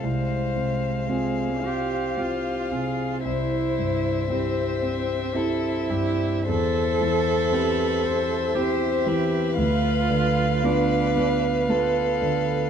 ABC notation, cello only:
X:1
M:3/4
L:1/8
Q:1/4=57
K:C
V:1 name="Cello"
_A,3 G F2 | E2 C2 E2 | A4 G2 | F2 D2 z2 |]